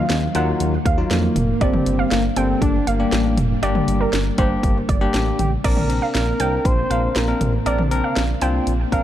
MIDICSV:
0, 0, Header, 1, 7, 480
1, 0, Start_track
1, 0, Key_signature, -2, "major"
1, 0, Tempo, 504202
1, 1534, Time_signature, 4, 2, 24, 8
1, 8599, End_track
2, 0, Start_track
2, 0, Title_t, "Synth pluck"
2, 0, Program_c, 0, 84
2, 0, Note_on_c, 0, 77, 80
2, 114, Note_off_c, 0, 77, 0
2, 334, Note_on_c, 0, 78, 78
2, 404, Note_off_c, 0, 78, 0
2, 812, Note_on_c, 0, 77, 82
2, 953, Note_off_c, 0, 77, 0
2, 1533, Note_on_c, 0, 74, 97
2, 1674, Note_off_c, 0, 74, 0
2, 1894, Note_on_c, 0, 77, 77
2, 2035, Note_off_c, 0, 77, 0
2, 2253, Note_on_c, 0, 79, 84
2, 2324, Note_off_c, 0, 79, 0
2, 2733, Note_on_c, 0, 77, 82
2, 2874, Note_off_c, 0, 77, 0
2, 3453, Note_on_c, 0, 74, 99
2, 3593, Note_off_c, 0, 74, 0
2, 3812, Note_on_c, 0, 70, 78
2, 3953, Note_off_c, 0, 70, 0
2, 4174, Note_on_c, 0, 72, 78
2, 4244, Note_off_c, 0, 72, 0
2, 4653, Note_on_c, 0, 74, 78
2, 4794, Note_off_c, 0, 74, 0
2, 5372, Note_on_c, 0, 74, 101
2, 5513, Note_off_c, 0, 74, 0
2, 5732, Note_on_c, 0, 77, 78
2, 5873, Note_off_c, 0, 77, 0
2, 6093, Note_on_c, 0, 79, 86
2, 6163, Note_off_c, 0, 79, 0
2, 6573, Note_on_c, 0, 77, 77
2, 6714, Note_off_c, 0, 77, 0
2, 7294, Note_on_c, 0, 74, 98
2, 7435, Note_off_c, 0, 74, 0
2, 7654, Note_on_c, 0, 77, 77
2, 7794, Note_off_c, 0, 77, 0
2, 8014, Note_on_c, 0, 79, 78
2, 8084, Note_off_c, 0, 79, 0
2, 8494, Note_on_c, 0, 77, 78
2, 8599, Note_off_c, 0, 77, 0
2, 8599, End_track
3, 0, Start_track
3, 0, Title_t, "Analog synth lead"
3, 0, Program_c, 1, 81
3, 1054, Note_on_c, 1, 58, 94
3, 1535, Note_on_c, 1, 60, 112
3, 1549, Note_off_c, 1, 58, 0
3, 2008, Note_off_c, 1, 60, 0
3, 2013, Note_on_c, 1, 58, 97
3, 2121, Note_off_c, 1, 58, 0
3, 2254, Note_on_c, 1, 60, 102
3, 2477, Note_off_c, 1, 60, 0
3, 2495, Note_on_c, 1, 62, 120
3, 2718, Note_off_c, 1, 62, 0
3, 2735, Note_on_c, 1, 58, 97
3, 3181, Note_off_c, 1, 58, 0
3, 5133, Note_on_c, 1, 67, 81
3, 5241, Note_off_c, 1, 67, 0
3, 5372, Note_on_c, 1, 70, 106
3, 5819, Note_off_c, 1, 70, 0
3, 5852, Note_on_c, 1, 70, 107
3, 6333, Note_on_c, 1, 72, 121
3, 6347, Note_off_c, 1, 70, 0
3, 6814, Note_on_c, 1, 70, 99
3, 6829, Note_off_c, 1, 72, 0
3, 7174, Note_off_c, 1, 70, 0
3, 8599, End_track
4, 0, Start_track
4, 0, Title_t, "Tine electric piano"
4, 0, Program_c, 2, 4
4, 333, Note_on_c, 2, 54, 98
4, 333, Note_on_c, 2, 58, 89
4, 333, Note_on_c, 2, 63, 89
4, 333, Note_on_c, 2, 65, 105
4, 697, Note_off_c, 2, 54, 0
4, 697, Note_off_c, 2, 58, 0
4, 697, Note_off_c, 2, 63, 0
4, 697, Note_off_c, 2, 65, 0
4, 934, Note_on_c, 2, 54, 81
4, 934, Note_on_c, 2, 58, 74
4, 934, Note_on_c, 2, 63, 74
4, 934, Note_on_c, 2, 65, 89
4, 1297, Note_off_c, 2, 65, 0
4, 1298, Note_off_c, 2, 54, 0
4, 1298, Note_off_c, 2, 58, 0
4, 1298, Note_off_c, 2, 63, 0
4, 1532, Note_on_c, 2, 55, 81
4, 1533, Note_on_c, 2, 58, 74
4, 1533, Note_on_c, 2, 62, 72
4, 1533, Note_on_c, 2, 67, 87
4, 1970, Note_off_c, 2, 55, 0
4, 1970, Note_off_c, 2, 58, 0
4, 1970, Note_off_c, 2, 62, 0
4, 1970, Note_off_c, 2, 67, 0
4, 2253, Note_on_c, 2, 55, 82
4, 2253, Note_on_c, 2, 58, 75
4, 2253, Note_on_c, 2, 62, 72
4, 2253, Note_on_c, 2, 69, 86
4, 2617, Note_off_c, 2, 55, 0
4, 2617, Note_off_c, 2, 58, 0
4, 2617, Note_off_c, 2, 62, 0
4, 2617, Note_off_c, 2, 69, 0
4, 2853, Note_on_c, 2, 55, 78
4, 2853, Note_on_c, 2, 58, 73
4, 2853, Note_on_c, 2, 62, 73
4, 2854, Note_on_c, 2, 67, 85
4, 3217, Note_off_c, 2, 55, 0
4, 3217, Note_off_c, 2, 58, 0
4, 3217, Note_off_c, 2, 62, 0
4, 3217, Note_off_c, 2, 67, 0
4, 3453, Note_on_c, 2, 55, 89
4, 3453, Note_on_c, 2, 58, 82
4, 3453, Note_on_c, 2, 62, 83
4, 3453, Note_on_c, 2, 67, 103
4, 3890, Note_off_c, 2, 55, 0
4, 3890, Note_off_c, 2, 58, 0
4, 3890, Note_off_c, 2, 62, 0
4, 3890, Note_off_c, 2, 67, 0
4, 4173, Note_on_c, 2, 55, 92
4, 4173, Note_on_c, 2, 58, 88
4, 4173, Note_on_c, 2, 62, 85
4, 4173, Note_on_c, 2, 67, 105
4, 4537, Note_off_c, 2, 55, 0
4, 4537, Note_off_c, 2, 58, 0
4, 4537, Note_off_c, 2, 62, 0
4, 4537, Note_off_c, 2, 67, 0
4, 4773, Note_on_c, 2, 55, 95
4, 4773, Note_on_c, 2, 58, 83
4, 4773, Note_on_c, 2, 62, 86
4, 4773, Note_on_c, 2, 67, 104
4, 5137, Note_off_c, 2, 55, 0
4, 5137, Note_off_c, 2, 58, 0
4, 5137, Note_off_c, 2, 62, 0
4, 5137, Note_off_c, 2, 67, 0
4, 5373, Note_on_c, 2, 60, 72
4, 5373, Note_on_c, 2, 62, 70
4, 5373, Note_on_c, 2, 70, 83
4, 5519, Note_off_c, 2, 60, 0
4, 5519, Note_off_c, 2, 62, 0
4, 5519, Note_off_c, 2, 70, 0
4, 5613, Note_on_c, 2, 60, 75
4, 5613, Note_on_c, 2, 62, 68
4, 5613, Note_on_c, 2, 70, 80
4, 5905, Note_off_c, 2, 60, 0
4, 5905, Note_off_c, 2, 62, 0
4, 5905, Note_off_c, 2, 70, 0
4, 6092, Note_on_c, 2, 60, 81
4, 6092, Note_on_c, 2, 62, 73
4, 6092, Note_on_c, 2, 70, 87
4, 6384, Note_off_c, 2, 60, 0
4, 6384, Note_off_c, 2, 62, 0
4, 6384, Note_off_c, 2, 70, 0
4, 6573, Note_on_c, 2, 60, 72
4, 6573, Note_on_c, 2, 62, 66
4, 6573, Note_on_c, 2, 70, 80
4, 6792, Note_off_c, 2, 60, 0
4, 6792, Note_off_c, 2, 62, 0
4, 6792, Note_off_c, 2, 70, 0
4, 6933, Note_on_c, 2, 60, 76
4, 6933, Note_on_c, 2, 62, 72
4, 6933, Note_on_c, 2, 70, 86
4, 7152, Note_off_c, 2, 60, 0
4, 7152, Note_off_c, 2, 62, 0
4, 7152, Note_off_c, 2, 70, 0
4, 7293, Note_on_c, 2, 60, 89
4, 7293, Note_on_c, 2, 62, 84
4, 7293, Note_on_c, 2, 70, 99
4, 7439, Note_off_c, 2, 60, 0
4, 7439, Note_off_c, 2, 62, 0
4, 7439, Note_off_c, 2, 70, 0
4, 7533, Note_on_c, 2, 60, 89
4, 7533, Note_on_c, 2, 62, 79
4, 7533, Note_on_c, 2, 70, 101
4, 7825, Note_off_c, 2, 60, 0
4, 7825, Note_off_c, 2, 62, 0
4, 7825, Note_off_c, 2, 70, 0
4, 8014, Note_on_c, 2, 60, 95
4, 8014, Note_on_c, 2, 62, 83
4, 8014, Note_on_c, 2, 65, 103
4, 8305, Note_off_c, 2, 60, 0
4, 8305, Note_off_c, 2, 62, 0
4, 8305, Note_off_c, 2, 65, 0
4, 8494, Note_on_c, 2, 60, 85
4, 8494, Note_on_c, 2, 62, 79
4, 8494, Note_on_c, 2, 70, 98
4, 8599, Note_off_c, 2, 60, 0
4, 8599, Note_off_c, 2, 62, 0
4, 8599, Note_off_c, 2, 70, 0
4, 8599, End_track
5, 0, Start_track
5, 0, Title_t, "String machine"
5, 0, Program_c, 3, 50
5, 0, Note_on_c, 3, 51, 80
5, 0, Note_on_c, 3, 54, 91
5, 0, Note_on_c, 3, 58, 77
5, 0, Note_on_c, 3, 77, 76
5, 1496, Note_off_c, 3, 51, 0
5, 1496, Note_off_c, 3, 54, 0
5, 1496, Note_off_c, 3, 77, 0
5, 1532, Note_on_c, 3, 55, 86
5, 1533, Note_on_c, 3, 62, 92
5, 5335, Note_off_c, 3, 55, 0
5, 5335, Note_off_c, 3, 62, 0
5, 5336, Note_off_c, 3, 58, 0
5, 5374, Note_on_c, 3, 58, 81
5, 5374, Note_on_c, 3, 60, 76
5, 5374, Note_on_c, 3, 62, 92
5, 8599, Note_off_c, 3, 58, 0
5, 8599, Note_off_c, 3, 60, 0
5, 8599, Note_off_c, 3, 62, 0
5, 8599, End_track
6, 0, Start_track
6, 0, Title_t, "Analog synth bass"
6, 0, Program_c, 4, 38
6, 94, Note_on_c, 4, 39, 110
6, 262, Note_off_c, 4, 39, 0
6, 335, Note_on_c, 4, 39, 102
6, 502, Note_off_c, 4, 39, 0
6, 575, Note_on_c, 4, 39, 103
6, 742, Note_off_c, 4, 39, 0
6, 815, Note_on_c, 4, 39, 104
6, 982, Note_off_c, 4, 39, 0
6, 1054, Note_on_c, 4, 41, 96
6, 1222, Note_off_c, 4, 41, 0
6, 1294, Note_on_c, 4, 29, 94
6, 1462, Note_off_c, 4, 29, 0
6, 1534, Note_on_c, 4, 31, 111
6, 1702, Note_off_c, 4, 31, 0
6, 1774, Note_on_c, 4, 31, 107
6, 1942, Note_off_c, 4, 31, 0
6, 2014, Note_on_c, 4, 31, 108
6, 2182, Note_off_c, 4, 31, 0
6, 2254, Note_on_c, 4, 31, 106
6, 2422, Note_off_c, 4, 31, 0
6, 2491, Note_on_c, 4, 31, 103
6, 2660, Note_off_c, 4, 31, 0
6, 2734, Note_on_c, 4, 31, 100
6, 2902, Note_off_c, 4, 31, 0
6, 2973, Note_on_c, 4, 33, 107
6, 3213, Note_on_c, 4, 29, 97
6, 3227, Note_off_c, 4, 33, 0
6, 3381, Note_off_c, 4, 29, 0
6, 3453, Note_on_c, 4, 31, 112
6, 3622, Note_off_c, 4, 31, 0
6, 3694, Note_on_c, 4, 31, 101
6, 3862, Note_off_c, 4, 31, 0
6, 3933, Note_on_c, 4, 31, 107
6, 4101, Note_off_c, 4, 31, 0
6, 4173, Note_on_c, 4, 31, 107
6, 4341, Note_off_c, 4, 31, 0
6, 4411, Note_on_c, 4, 31, 106
6, 4580, Note_off_c, 4, 31, 0
6, 4655, Note_on_c, 4, 31, 104
6, 4822, Note_off_c, 4, 31, 0
6, 4894, Note_on_c, 4, 33, 89
6, 5062, Note_off_c, 4, 33, 0
6, 5134, Note_on_c, 4, 33, 98
6, 5302, Note_off_c, 4, 33, 0
6, 5374, Note_on_c, 4, 34, 104
6, 5710, Note_off_c, 4, 34, 0
6, 5854, Note_on_c, 4, 34, 116
6, 6022, Note_off_c, 4, 34, 0
6, 6094, Note_on_c, 4, 36, 94
6, 6262, Note_off_c, 4, 36, 0
6, 6331, Note_on_c, 4, 34, 108
6, 6500, Note_off_c, 4, 34, 0
6, 6575, Note_on_c, 4, 34, 106
6, 6742, Note_off_c, 4, 34, 0
6, 6815, Note_on_c, 4, 34, 96
6, 6982, Note_off_c, 4, 34, 0
6, 7055, Note_on_c, 4, 33, 99
6, 7223, Note_off_c, 4, 33, 0
6, 7295, Note_on_c, 4, 34, 104
6, 7631, Note_off_c, 4, 34, 0
6, 7775, Note_on_c, 4, 34, 113
6, 7943, Note_off_c, 4, 34, 0
6, 8015, Note_on_c, 4, 36, 96
6, 8183, Note_off_c, 4, 36, 0
6, 8254, Note_on_c, 4, 34, 108
6, 8422, Note_off_c, 4, 34, 0
6, 8495, Note_on_c, 4, 34, 108
6, 8599, Note_off_c, 4, 34, 0
6, 8599, End_track
7, 0, Start_track
7, 0, Title_t, "Drums"
7, 92, Note_on_c, 9, 38, 118
7, 93, Note_on_c, 9, 42, 77
7, 188, Note_off_c, 9, 38, 0
7, 188, Note_off_c, 9, 42, 0
7, 331, Note_on_c, 9, 42, 81
7, 426, Note_off_c, 9, 42, 0
7, 574, Note_on_c, 9, 42, 71
7, 669, Note_off_c, 9, 42, 0
7, 815, Note_on_c, 9, 36, 103
7, 816, Note_on_c, 9, 42, 76
7, 910, Note_off_c, 9, 36, 0
7, 911, Note_off_c, 9, 42, 0
7, 1055, Note_on_c, 9, 38, 117
7, 1055, Note_on_c, 9, 42, 76
7, 1150, Note_off_c, 9, 38, 0
7, 1150, Note_off_c, 9, 42, 0
7, 1293, Note_on_c, 9, 45, 99
7, 1294, Note_on_c, 9, 42, 80
7, 1388, Note_off_c, 9, 45, 0
7, 1389, Note_off_c, 9, 42, 0
7, 1534, Note_on_c, 9, 36, 109
7, 1534, Note_on_c, 9, 42, 76
7, 1629, Note_off_c, 9, 42, 0
7, 1630, Note_off_c, 9, 36, 0
7, 1652, Note_on_c, 9, 47, 97
7, 1747, Note_off_c, 9, 47, 0
7, 1775, Note_on_c, 9, 42, 75
7, 1870, Note_off_c, 9, 42, 0
7, 2013, Note_on_c, 9, 38, 115
7, 2013, Note_on_c, 9, 42, 79
7, 2108, Note_off_c, 9, 38, 0
7, 2108, Note_off_c, 9, 42, 0
7, 2251, Note_on_c, 9, 42, 82
7, 2346, Note_off_c, 9, 42, 0
7, 2491, Note_on_c, 9, 36, 96
7, 2494, Note_on_c, 9, 42, 66
7, 2586, Note_off_c, 9, 36, 0
7, 2589, Note_off_c, 9, 42, 0
7, 2735, Note_on_c, 9, 42, 77
7, 2830, Note_off_c, 9, 42, 0
7, 2974, Note_on_c, 9, 38, 117
7, 2974, Note_on_c, 9, 42, 74
7, 3069, Note_off_c, 9, 38, 0
7, 3070, Note_off_c, 9, 42, 0
7, 3213, Note_on_c, 9, 42, 79
7, 3213, Note_on_c, 9, 45, 100
7, 3308, Note_off_c, 9, 45, 0
7, 3309, Note_off_c, 9, 42, 0
7, 3454, Note_on_c, 9, 42, 79
7, 3549, Note_off_c, 9, 42, 0
7, 3571, Note_on_c, 9, 47, 95
7, 3666, Note_off_c, 9, 47, 0
7, 3694, Note_on_c, 9, 42, 77
7, 3789, Note_off_c, 9, 42, 0
7, 3932, Note_on_c, 9, 38, 116
7, 3933, Note_on_c, 9, 42, 75
7, 4027, Note_off_c, 9, 38, 0
7, 4028, Note_off_c, 9, 42, 0
7, 4170, Note_on_c, 9, 42, 81
7, 4173, Note_on_c, 9, 36, 93
7, 4266, Note_off_c, 9, 42, 0
7, 4268, Note_off_c, 9, 36, 0
7, 4411, Note_on_c, 9, 36, 93
7, 4413, Note_on_c, 9, 42, 70
7, 4506, Note_off_c, 9, 36, 0
7, 4508, Note_off_c, 9, 42, 0
7, 4654, Note_on_c, 9, 36, 105
7, 4655, Note_on_c, 9, 42, 76
7, 4750, Note_off_c, 9, 36, 0
7, 4751, Note_off_c, 9, 42, 0
7, 4894, Note_on_c, 9, 38, 116
7, 4894, Note_on_c, 9, 42, 80
7, 4989, Note_off_c, 9, 38, 0
7, 4990, Note_off_c, 9, 42, 0
7, 5132, Note_on_c, 9, 47, 70
7, 5133, Note_on_c, 9, 42, 79
7, 5228, Note_off_c, 9, 42, 0
7, 5228, Note_off_c, 9, 47, 0
7, 5374, Note_on_c, 9, 36, 105
7, 5374, Note_on_c, 9, 42, 75
7, 5374, Note_on_c, 9, 49, 96
7, 5469, Note_off_c, 9, 36, 0
7, 5469, Note_off_c, 9, 42, 0
7, 5469, Note_off_c, 9, 49, 0
7, 5491, Note_on_c, 9, 47, 96
7, 5586, Note_off_c, 9, 47, 0
7, 5614, Note_on_c, 9, 42, 75
7, 5709, Note_off_c, 9, 42, 0
7, 5852, Note_on_c, 9, 38, 109
7, 5853, Note_on_c, 9, 42, 75
7, 5947, Note_off_c, 9, 38, 0
7, 5948, Note_off_c, 9, 42, 0
7, 6091, Note_on_c, 9, 42, 77
7, 6186, Note_off_c, 9, 42, 0
7, 6331, Note_on_c, 9, 36, 92
7, 6334, Note_on_c, 9, 42, 67
7, 6426, Note_off_c, 9, 36, 0
7, 6429, Note_off_c, 9, 42, 0
7, 6576, Note_on_c, 9, 42, 74
7, 6671, Note_off_c, 9, 42, 0
7, 6814, Note_on_c, 9, 38, 117
7, 6815, Note_on_c, 9, 42, 77
7, 6910, Note_off_c, 9, 38, 0
7, 6910, Note_off_c, 9, 42, 0
7, 7053, Note_on_c, 9, 42, 78
7, 7053, Note_on_c, 9, 45, 98
7, 7148, Note_off_c, 9, 45, 0
7, 7149, Note_off_c, 9, 42, 0
7, 7294, Note_on_c, 9, 42, 76
7, 7390, Note_off_c, 9, 42, 0
7, 7411, Note_on_c, 9, 47, 94
7, 7507, Note_off_c, 9, 47, 0
7, 7534, Note_on_c, 9, 42, 78
7, 7629, Note_off_c, 9, 42, 0
7, 7773, Note_on_c, 9, 38, 117
7, 7773, Note_on_c, 9, 42, 76
7, 7868, Note_off_c, 9, 38, 0
7, 7868, Note_off_c, 9, 42, 0
7, 8011, Note_on_c, 9, 42, 81
7, 8106, Note_off_c, 9, 42, 0
7, 8254, Note_on_c, 9, 42, 68
7, 8349, Note_off_c, 9, 42, 0
7, 8495, Note_on_c, 9, 36, 101
7, 8496, Note_on_c, 9, 42, 72
7, 8590, Note_off_c, 9, 36, 0
7, 8591, Note_off_c, 9, 42, 0
7, 8599, End_track
0, 0, End_of_file